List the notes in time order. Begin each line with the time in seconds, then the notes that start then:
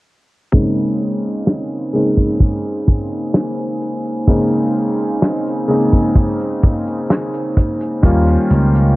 0.52 C#3 G#3 A#3 C4 D#4 C5 G#5, kick, closed hi-hat
0.78 closed hi-hat
1.01 closed hi-hat
1.25 closed hi-hat
1.47 snare, closed hi-hat
1.71 closed hi-hat
1.93 C#3 G#3 A#3 C4 D#4
2.17 kick, closed hi-hat
2.40 kick, closed hi-hat
2.65 closed hi-hat
2.88 kick, closed hi-hat
3.12 closed hi-hat
3.34 snare, closed hi-hat
3.58 closed hi-hat
3.82 closed hi-hat
4.04 closed hi-hat
4.28 C#3 G#3 A#3 C4 D#4, kick, closed hi-hat
4.53 closed hi-hat
4.75 closed hi-hat
4.99 closed hi-hat
5.22 snare, closed hi-hat
5.47 closed hi-hat
5.68 C#3 G#3 A#3 C4 D#4
5.93 kick, closed hi-hat
6.16 kick, closed hi-hat
6.40 closed hi-hat
6.63 kick, closed hi-hat
6.87 closed hi-hat
7.10 snare, closed hi-hat
7.34 closed hi-hat
7.57 kick, closed hi-hat
7.81 closed hi-hat
8.03 D#2 D#3 G3 A#3 C#4 F4 G5, kick, closed hi-hat
8.28 closed hi-hat
8.50 C#2, closed hi-hat
8.75 closed hi-hat